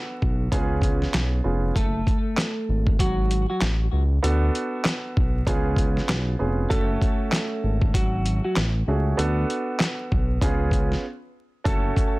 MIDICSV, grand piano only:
0, 0, Header, 1, 2, 480
1, 0, Start_track
1, 0, Key_signature, 3, "minor"
1, 0, Tempo, 618557
1, 1364, Time_signature, 4, 2, 24, 8
1, 9463, End_track
2, 0, Start_track
2, 0, Title_t, "Grand piano"
2, 0, Program_c, 0, 0
2, 0, Note_on_c, 0, 59, 94
2, 0, Note_on_c, 0, 62, 83
2, 0, Note_on_c, 0, 66, 92
2, 0, Note_on_c, 0, 69, 101
2, 388, Note_off_c, 0, 59, 0
2, 400, Note_on_c, 0, 59, 86
2, 402, Note_off_c, 0, 62, 0
2, 402, Note_on_c, 0, 61, 88
2, 403, Note_off_c, 0, 66, 0
2, 404, Note_off_c, 0, 69, 0
2, 404, Note_on_c, 0, 65, 89
2, 407, Note_on_c, 0, 68, 106
2, 1077, Note_off_c, 0, 59, 0
2, 1078, Note_off_c, 0, 61, 0
2, 1079, Note_off_c, 0, 65, 0
2, 1081, Note_off_c, 0, 68, 0
2, 1117, Note_on_c, 0, 59, 75
2, 1119, Note_on_c, 0, 61, 64
2, 1121, Note_on_c, 0, 65, 69
2, 1123, Note_on_c, 0, 68, 82
2, 1346, Note_off_c, 0, 59, 0
2, 1347, Note_off_c, 0, 61, 0
2, 1348, Note_off_c, 0, 65, 0
2, 1349, Note_off_c, 0, 68, 0
2, 3278, Note_on_c, 0, 59, 99
2, 3280, Note_on_c, 0, 62, 85
2, 3282, Note_on_c, 0, 66, 91
2, 3284, Note_on_c, 0, 69, 106
2, 4230, Note_off_c, 0, 59, 0
2, 4241, Note_on_c, 0, 59, 90
2, 4242, Note_off_c, 0, 62, 0
2, 4243, Note_off_c, 0, 66, 0
2, 4243, Note_on_c, 0, 61, 86
2, 4244, Note_off_c, 0, 69, 0
2, 4245, Note_on_c, 0, 65, 89
2, 4247, Note_on_c, 0, 68, 101
2, 4918, Note_off_c, 0, 59, 0
2, 4919, Note_off_c, 0, 61, 0
2, 4920, Note_off_c, 0, 65, 0
2, 4921, Note_off_c, 0, 68, 0
2, 4959, Note_on_c, 0, 59, 78
2, 4961, Note_on_c, 0, 61, 67
2, 4963, Note_on_c, 0, 65, 68
2, 4965, Note_on_c, 0, 68, 84
2, 5186, Note_off_c, 0, 61, 0
2, 5187, Note_off_c, 0, 59, 0
2, 5189, Note_off_c, 0, 65, 0
2, 5190, Note_off_c, 0, 68, 0
2, 5195, Note_on_c, 0, 57, 90
2, 5198, Note_on_c, 0, 61, 87
2, 5199, Note_on_c, 0, 66, 87
2, 5202, Note_on_c, 0, 69, 102
2, 6769, Note_off_c, 0, 57, 0
2, 6770, Note_off_c, 0, 61, 0
2, 6771, Note_off_c, 0, 66, 0
2, 6772, Note_off_c, 0, 69, 0
2, 6889, Note_on_c, 0, 57, 70
2, 6891, Note_on_c, 0, 61, 69
2, 6894, Note_on_c, 0, 66, 75
2, 6896, Note_on_c, 0, 68, 81
2, 7111, Note_off_c, 0, 66, 0
2, 7112, Note_off_c, 0, 57, 0
2, 7113, Note_off_c, 0, 61, 0
2, 7115, Note_off_c, 0, 68, 0
2, 7117, Note_on_c, 0, 59, 98
2, 7120, Note_on_c, 0, 62, 86
2, 7122, Note_on_c, 0, 66, 90
2, 7124, Note_on_c, 0, 69, 102
2, 8069, Note_off_c, 0, 59, 0
2, 8080, Note_on_c, 0, 59, 91
2, 8082, Note_off_c, 0, 62, 0
2, 8083, Note_off_c, 0, 66, 0
2, 8083, Note_on_c, 0, 61, 85
2, 8085, Note_off_c, 0, 69, 0
2, 8085, Note_on_c, 0, 65, 88
2, 8088, Note_on_c, 0, 68, 103
2, 8562, Note_off_c, 0, 59, 0
2, 8564, Note_off_c, 0, 61, 0
2, 8565, Note_off_c, 0, 65, 0
2, 8566, Note_off_c, 0, 68, 0
2, 9034, Note_on_c, 0, 57, 93
2, 9036, Note_on_c, 0, 61, 87
2, 9038, Note_on_c, 0, 66, 88
2, 9040, Note_on_c, 0, 69, 101
2, 9463, Note_off_c, 0, 57, 0
2, 9463, Note_off_c, 0, 61, 0
2, 9463, Note_off_c, 0, 66, 0
2, 9463, Note_off_c, 0, 69, 0
2, 9463, End_track
0, 0, End_of_file